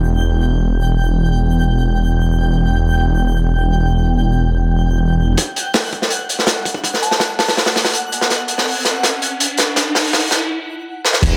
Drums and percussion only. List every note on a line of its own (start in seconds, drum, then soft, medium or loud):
5.37 kick loud
5.37 closed hi-hat medium
5.56 closed hi-hat medium
5.74 snare loud
5.74 open hi-hat medium
5.92 kick medium
5.92 closed hi-hat medium
6.02 snare soft
6.10 closed hi-hat medium
6.29 closed hi-hat medium
6.39 snare soft
6.47 snare loud
6.47 closed hi-hat medium
6.65 kick loud
6.65 closed hi-hat medium
6.74 kick medium
6.84 kick loud
6.84 closed hi-hat medium
6.94 snare soft
7.03 closed hi-hat medium
7.11 snare soft
7.20 snare loud
7.20 closed hi-hat medium
7.39 snare loud
7.39 open hi-hat medium
7.48 snare loud
7.48 open hi-hat medium
7.57 snare loud
7.57 open hi-hat medium
7.66 snare loud
7.66 open hi-hat medium
7.75 snare medium
7.75 open hi-hat medium
7.85 snare loud
7.85 open hi-hat medium
7.93 closed hi-hat medium
8.12 closed hi-hat medium
8.21 snare medium
8.30 snare soft
8.30 closed hi-hat medium
8.48 closed hi-hat medium
8.58 snare soft
8.68 open hi-hat medium
8.85 snare medium
8.85 closed hi-hat medium
9.03 snare medium
9.03 closed hi-hat medium
9.22 closed hi-hat medium
9.40 closed hi-hat loud
9.57 snare medium
9.57 closed hi-hat medium
9.76 snare medium
9.76 closed hi-hat medium
9.95 snare medium
9.95 open hi-hat medium
10.04 open hi-hat medium
10.13 snare medium
10.13 open hi-hat medium
10.22 open hi-hat medium
10.31 snare medium
10.31 closed hi-hat medium
11.05 snare medium
11.13 snare medium
11.23 kick loud
11.23 closed hi-hat loud
11.23 crash medium